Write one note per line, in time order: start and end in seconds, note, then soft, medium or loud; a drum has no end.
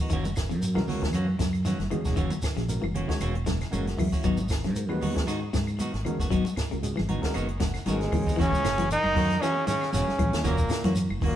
0.01 0.13 B3 soft
0.01 0.12 D#4 medium
0.01 0.12 F#4 medium
0.10 0.52 F#1 medium
0.10 0.32 D#3 loud
0.10 0.26 E3 medium
0.10 0.26 A#3 loud
0.10 0.26 C#4 medium
0.10 0.25 F#4 loud
0.10 kick medium
0.10 closed hi-hat medium
0.10 high conga soft
0.10 shekere medium
0.25 muted clean electric guitar stroke soft
0.25 high conga medium
0.25 shekere medium
0.36 kick medium
0.36 snare medium
0.36 closed hi-hat soft
0.36 claves medium
0.36 shekere medium
0.49 0.77 F#2 medium
0.49 0.72 C#3 medium
0.49 closed hi-hat soft
0.49 shekere soft
0.61 0.67 F#4 medium
0.61 0.67 A#4 medium
0.61 muted clean electric guitar stroke soft
0.61 closed hi-hat medium
0.61 shekere medium
0.74 1.13 C#2 medium
0.74 0.98 E3 medium
0.74 1.09 G#3 medium
0.74 1.09 C#4 medium
0.74 1.09 F#4 medium
0.74 1.09 A#4 loud
0.74 muted clean electric guitar stroke soft
0.74 snare soft
0.74 high conga medium
0.74 claves medium
0.87 1.03 E3 medium
0.87 1.03 A#3 medium
0.87 1.03 C#4 medium
0.87 1.02 F#4 medium
0.87 snare soft
0.87 open hi-hat medium
0.87 low conga medium
0.87 shekere soft
1.02 1.24 D#3 medium
1.02 muted clean electric guitar stroke soft
1.02 kick medium
1.02 snare medium
1.02 closed hi-hat soft
1.13 1.34 F#2 medium
1.13 1.28 E3 medium
1.13 1.28 A#3 medium
1.13 1.27 C#4 medium
1.13 1.27 F#4 medium
1.13 closed hi-hat medium
1.13 claves medium
1.13 shekere medium
1.28 muted clean electric guitar stroke soft
1.39 1.71 F#2 medium
1.39 1.61 C#3 medium
1.39 muted clean electric guitar stroke soft
1.39 kick medium
1.39 snare medium
1.39 closed hi-hat soft
1.39 high conga medium
1.39 shekere medium
1.53 closed hi-hat soft
1.53 claves medium
1.53 shekere soft
1.65 1.87 D#3 medium
1.65 1.80 E3 medium
1.65 1.79 A#3 medium
1.65 1.79 C#4 medium
1.65 1.78 F#4 medium
1.65 snare soft
1.65 closed hi-hat medium
1.65 high conga medium
1.65 shekere medium
1.79 1.89 F#1 medium
1.79 muted clean electric guitar stroke soft
1.79 snare soft
1.79 closed hi-hat soft
1.79 high conga medium
1.90 2.13 E3 medium
1.90 2.13 G#3 medium
1.90 2.13 C#4 medium
1.90 2.14 F#4 medium
1.90 2.14 G#4 medium
1.90 muted clean electric guitar stroke soft
1.90 closed hi-hat soft
1.90 low conga medium
1.90 claves medium
1.90 shekere soft
2.05 2.15 E1 medium
2.05 2.16 A#3 soft
2.05 2.16 C#4 soft
2.05 2.16 F#4 medium
2.05 kick medium
2.05 snare soft
2.05 closed hi-hat soft
2.05 shekere medium
2.16 2.29 F#1 medium
2.16 2.38 D#3 loud
2.16 2.32 E3 medium
2.16 2.32 A#3 medium
2.16 2.31 C#4 medium
2.16 2.31 F#4 medium
2.16 kick medium
2.16 closed hi-hat medium
2.16 shekere medium
2.31 muted clean electric guitar stroke soft
2.31 closed hi-hat soft
2.31 high conga medium
2.31 low conga medium
2.31 shekere medium
2.42 muted fingered electric bass stroke soft
2.42 kick medium
2.42 snare medium
2.42 closed hi-hat soft
2.42 claves medium
2.42 shekere medium
2.56 2.77 A#1 medium
2.56 2.79 C#3 medium
2.56 2.61 F#4 medium
2.56 2.62 G#4 loud
2.56 snare soft
2.56 closed hi-hat soft
2.56 shekere soft
2.69 2.83 G#3 medium
2.69 2.83 C#4 medium
2.69 2.83 F#4 medium
2.69 2.83 A#4 medium
2.69 muted clean electric guitar stroke soft
2.69 closed hi-hat medium
2.69 high conga soft
2.69 shekere medium
2.82 3.04 F#1 medium
2.82 3.04 E3 medium
2.82 muted clean electric guitar stroke soft
2.82 high conga medium
2.82 claves medium
2.95 3.09 E3 medium
2.95 3.09 A#3 medium
2.95 3.09 C#4 medium
2.95 3.08 F#4 medium
2.95 closed hi-hat medium
2.95 low conga medium
2.95 shekere soft
3.08 3.30 D#3 medium
3.08 3.30 G#3 medium
3.08 3.30 C#4 medium
3.08 3.30 F#4 medium
3.08 3.31 C#5 loud
3.08 muted clean electric guitar stroke soft
3.08 kick medium
3.08 snare medium
3.08 closed hi-hat soft
3.20 3.61 E1 loud
3.20 3.36 E3 medium
3.20 3.36 A#3 medium
3.20 3.35 C#4 medium
3.20 3.35 F#4 medium
3.20 closed hi-hat medium
3.20 claves medium
3.20 shekere medium
3.35 muted clean electric guitar stroke soft
3.35 closed hi-hat soft
3.46 3.68 C#3 medium
3.46 3.71 G#5 medium
3.46 muted clean electric guitar stroke soft
3.46 kick medium
3.46 snare medium
3.46 closed hi-hat medium
3.46 high conga medium
3.46 shekere medium
3.61 snare soft
3.61 closed hi-hat soft
3.61 claves medium
3.61 shekere soft
3.71 3.93 F#1 medium
3.71 3.87 E3 medium
3.71 4.07 G#3 medium
3.71 3.86 A#3 medium
3.71 4.07 C#4 medium
3.71 3.86 C#4 medium
3.71 4.07 F#4 medium
3.71 3.86 F#4 medium
3.71 4.07 A#4 medium
3.71 3.96 F#5 medium
3.71 closed hi-hat medium
3.71 high conga medium
3.71 shekere medium
3.87 muted clean electric guitar stroke soft
3.87 snare soft
3.87 closed hi-hat soft
3.87 high conga medium
3.97 4.10 F#2 medium
3.97 4.20 E3 medium
3.97 4.22 E5 medium
3.97 muted clean electric guitar stroke soft
3.97 kick medium
3.97 open hi-hat medium
3.97 low conga medium
3.97 claves medium
3.97 shekere soft
4.12 4.24 A#3 soft
4.12 4.24 C#4 medium
4.12 4.24 F#4 medium
4.12 muted fingered electric bass stroke soft
4.12 kick medium
4.12 shekere medium
4.24 4.68 G#1 medium
4.24 4.39 D#3 medium
4.24 4.46 F#3 loud
4.24 4.38 B3 loud
4.24 4.38 D#4 medium
4.24 4.38 F#4 medium
4.24 kick medium
4.24 closed hi-hat medium
4.24 shekere medium
4.37 muted clean electric guitar stroke soft
4.37 high conga medium
4.37 shekere medium
4.49 kick medium
4.49 snare medium
4.49 closed hi-hat soft
4.49 claves medium
4.49 shekere medium
4.63 4.91 G#2 medium
4.63 4.86 C#3 medium
4.63 snare soft
4.63 closed hi-hat soft
4.63 shekere soft
4.75 4.81 F#4 medium
4.75 4.81 A#4 medium
4.75 muted clean electric guitar stroke soft
4.75 closed hi-hat medium
4.75 high conga soft
4.75 shekere medium
4.88 5.28 D#2 medium
4.88 5.11 E3 medium
4.88 5.23 G#3 loud
4.88 5.23 C#4 medium
4.88 5.23 F#4 medium
4.88 5.23 B4 loud
4.88 muted clean electric guitar stroke soft
4.88 high conga medium
4.88 claves medium
5.01 5.16 D#3 medium
5.01 5.15 B3 medium
5.01 5.15 D#4 medium
5.01 5.14 F#4 medium
5.01 open hi-hat medium
5.01 high conga medium
5.01 low conga medium
5.01 shekere soft
5.15 muted clean electric guitar stroke soft
5.15 kick medium
5.15 snare medium
5.15 closed hi-hat soft
5.27 5.48 G#2 medium
5.27 5.42 D#3 medium
5.27 5.40 D#4 medium
5.27 5.40 F#4 medium
5.27 muted clean electric guitar stroke medium
5.27 snare soft
5.27 closed hi-hat medium
5.27 claves medium
5.27 shekere medium
5.41 muted clean electric guitar stroke soft
5.53 5.85 G#2 medium
5.53 5.75 C#3 medium
5.53 muted clean electric guitar stroke soft
5.53 kick medium
5.53 snare medium
5.53 closed hi-hat soft
5.53 high conga medium
5.53 shekere medium
5.67 closed hi-hat soft
5.67 claves medium
5.67 shekere soft
5.79 5.94 D#3 medium
5.79 5.93 B3 medium
5.79 5.93 D#4 medium
5.79 5.92 F#4 medium
5.79 muted clean electric guitar stroke medium
5.79 closed hi-hat medium
5.79 high conga medium
5.79 shekere medium
5.93 6.03 G#1 medium
5.93 muted clean electric guitar stroke soft
5.93 snare soft
5.93 closed hi-hat soft
6.05 6.27 E3 medium
6.05 6.27 G#3 medium
6.05 6.27 C#4 medium
6.05 6.27 F#4 medium
6.05 6.27 A#4 medium
6.05 muted clean electric guitar stroke soft
6.05 closed hi-hat soft
6.05 low conga medium
6.05 claves medium
6.05 shekere soft
6.19 6.29 F#1 medium
6.19 6.30 B3 soft
6.19 6.30 F#4 medium
6.19 kick medium
6.19 snare soft
6.19 closed hi-hat soft
6.19 shekere medium
6.30 6.42 G#1 medium
6.30 6.52 F#3 loud
6.30 6.45 B3 medium
6.30 6.45 D#4 loud
6.30 6.44 F#4 medium
6.30 muted clean electric guitar stroke medium
6.30 kick medium
6.30 closed hi-hat medium
6.30 high conga soft
6.30 shekere medium
6.45 muted clean electric guitar stroke soft
6.45 closed hi-hat soft
6.45 high conga medium
6.45 shekere medium
6.56 muted fingered electric bass stroke soft
6.56 kick medium
6.56 snare medium
6.56 closed hi-hat soft
6.56 claves medium
6.56 shekere medium
6.71 6.93 C#2 medium
6.71 6.93 C#3 medium
6.71 6.76 F#4 medium
6.71 6.76 A#4 loud
6.71 closed hi-hat soft
6.71 shekere soft
6.83 6.97 G#3 medium
6.83 6.97 C#4 medium
6.83 6.97 F#4 medium
6.83 6.98 G#4 medium
6.83 muted clean electric guitar stroke soft
6.83 closed hi-hat medium
6.83 high conga soft
6.83 shekere medium
6.96 7.19 G#1 medium
6.96 7.18 E3 medium
6.96 muted clean electric guitar stroke soft
6.96 snare soft
6.96 high conga medium
6.96 claves medium
7.08 7.23 D#3 medium
7.08 7.22 B3 medium
7.08 7.21 D#4 medium
7.08 7.21 F#4 medium
7.08 7.33 A#5 medium
7.08 closed hi-hat medium
7.08 high conga medium
7.08 low conga medium
7.08 shekere soft
7.22 7.44 D#3 medium
7.22 7.44 G#3 medium
7.22 7.44 C#4 medium
7.22 7.44 F#4 medium
7.22 7.45 A#4 loud
7.22 muted clean electric guitar stroke soft
7.22 kick medium
7.22 snare medium
7.22 closed hi-hat soft
7.34 7.76 F#1 loud
7.34 7.49 D#3 medium
7.34 7.48 B3 medium
7.34 7.48 D#4 medium
7.34 7.48 F#4 medium
7.34 7.59 G#5 medium
7.34 closed hi-hat medium
7.34 high conga soft
7.34 claves medium
7.34 shekere medium
7.49 muted clean electric guitar stroke soft
7.49 closed hi-hat soft
7.60 7.82 C#3 medium
7.60 7.84 F#5 medium
7.60 muted clean electric guitar stroke soft
7.60 kick medium
7.60 snare medium
7.60 closed hi-hat medium
7.60 high conga medium
7.60 shekere medium
7.74 snare soft
7.74 closed hi-hat soft
7.74 claves medium
7.74 shekere soft
7.86 8.07 G#1 medium
7.86 8.01 D#3 medium
7.86 8.08 D#3 medium
7.86 8.21 G#3 medium
7.86 8.36 G#3 medium
7.86 8.00 B3 medium
7.86 8.21 C#4 medium
7.86 8.00 D#4 medium
7.86 8.21 F#4 medium
7.86 8.00 F#4 medium
7.86 8.21 A#4 medium
7.86 8.11 D#5 medium
7.86 snare soft
7.86 closed hi-hat medium
7.86 high conga loud
7.86 shekere medium
7.90 8.37 G#2 medium
7.95 high conga medium
8.01 muted clean electric guitar stroke soft
8.01 snare soft
8.01 closed hi-hat soft
8.01 low conga medium
8.12 8.24 G#2 medium
8.12 8.34 E3 medium
8.12 8.37 C#5 medium
8.12 muted clean electric guitar stroke soft
8.12 kick medium
8.12 open hi-hat medium
8.12 low conga loud
8.12 claves medium
8.12 shekere soft
8.22 low conga medium
8.26 8.38 B3 soft
8.26 8.38 D#4 medium
8.26 muted clean electric guitar stroke medium
8.26 muted fingered electric bass stroke soft
8.26 kick medium
8.26 low conga medium
8.26 shekere medium
8.36 8.50 F#1 medium
8.36 8.58 E3 loud
8.36 8.53 E3 medium
8.36 8.52 A#3 medium
8.36 8.51 C#4 medium
8.36 8.51 F#4 medium
8.36 kick medium
8.36 snare soft
8.36 closed hi-hat medium
8.36 high conga soft
8.36 low conga medium
8.41 8.88 C#3 loud
8.41 8.88 C#4 loud
8.41 shekere medium
8.52 8.62 C#2 loud
8.52 muted clean electric guitar stroke soft
8.52 kick medium
8.52 shekere medium
8.63 8.95 F#1 medium
8.63 8.75 C#3 medium
8.63 muted clean electric guitar stroke soft
8.63 snare medium
8.63 closed hi-hat medium
8.63 claves medium
8.63 shekere loud
8.78 9.00 E3 medium
8.78 8.88 A#3 soft
8.78 8.88 C#4 medium
8.78 8.88 F#4 medium
8.78 closed hi-hat soft
8.78 high conga loud
8.78 shekere soft
8.89 9.45 D#3 loud
8.89 9.44 D#4 loud
8.89 muted clean electric guitar stroke soft
8.89 closed hi-hat medium
8.89 shekere medium
9.04 9.13 F#1 medium
9.04 high conga medium
9.04 claves medium
9.15 9.36 F#2 loud
9.15 9.37 D#3 medium
9.15 9.30 E3 medium
9.15 9.29 A#3 medium
9.15 9.29 C#4 medium
9.15 9.28 F#4 medium
9.15 kick medium
9.15 open hi-hat medium
9.15 low conga medium
9.15 shekere soft
9.30 muted clean electric guitar stroke soft
9.30 snare soft
9.30 closed hi-hat soft
9.41 9.68 C#3 medium
9.41 9.56 E3 medium
9.41 9.63 E3 medium
9.41 9.55 A#3 medium
9.41 9.67 C#4 loud
9.41 9.55 C#4 medium
9.41 9.55 F#4 medium
9.41 snare soft
9.41 closed hi-hat medium
9.41 high conga soft
9.41 claves medium
9.41 shekere medium
9.56 muted clean electric guitar stroke soft
9.67 9.92 C#3 medium
9.67 9.88 D#3 medium
9.67 9.91 C#4 medium
9.67 muted clean electric guitar stroke soft
9.67 snare soft
9.67 closed hi-hat medium
9.67 high conga loud
9.67 shekere medium
9.81 snare soft
9.81 claves medium
9.81 shekere soft
9.92 10.04 E1 medium
9.92 10.41 C#3 medium
9.92 10.07 E3 medium
9.92 10.06 A#3 medium
9.92 10.06 C#4 medium
9.92 10.41 C#4 medium
9.92 10.06 F#4 medium
9.92 snare soft
9.92 closed hi-hat medium
9.92 high conga medium
9.92 shekere loud
10.07 muted clean electric guitar stroke soft
10.07 muted fingered electric bass stroke soft
10.07 snare soft
10.07 high conga medium
10.18 10.30 A#1 medium
10.18 10.40 E3 medium
10.18 muted clean electric guitar stroke soft
10.18 kick medium
10.18 closed hi-hat soft
10.18 high conga medium
10.18 claves medium
10.18 shekere soft
10.33 10.42 D#2 medium
10.33 snare medium
10.33 closed hi-hat medium
10.33 shekere medium
10.44 10.64 E1 medium
10.44 10.94 A#2 medium
10.44 10.58 E3 medium
10.44 10.57 A#3 medium
10.44 10.93 A#3 loud
10.44 10.57 C#4 medium
10.44 10.57 F#4 medium
10.44 muted clean electric guitar stroke loud
10.44 kick medium
10.44 snare soft
10.44 closed hi-hat medium
10.44 high conga soft
10.44 low conga medium
10.44 shekere medium
10.58 muted clean electric guitar stroke soft
10.58 kick medium
10.58 shekere medium
10.69 10.82 C#3 medium
10.69 muted clean electric guitar stroke soft
10.69 snare medium
10.69 closed hi-hat soft
10.69 claves medium
10.69 shekere medium
10.84 11.04 F#2 medium
10.84 11.06 E3 medium
10.84 10.95 A#3 soft
10.84 10.96 C#4 medium
10.84 10.96 F#4 medium
10.84 snare soft
10.84 closed hi-hat medium
10.84 high conga loud
10.84 shekere soft
10.95 muted clean electric guitar stroke soft
10.95 closed hi-hat medium
10.95 high conga soft
10.95 shekere loud
11.09 11.19 F#1 medium
11.09 high conga medium
11.09 claves medium
11.21 11.36 F#1 medium
11.21 11.36 D#3 medium
11.21 11.36 E3 medium
11.21 11.36 A#3 medium
11.21 11.35 F#4 medium
11.21 kick medium
11.21 open hi-hat medium
11.21 low conga medium
11.21 shekere soft
11.26 11.36 A#2 medium
11.26 11.36 A#3 medium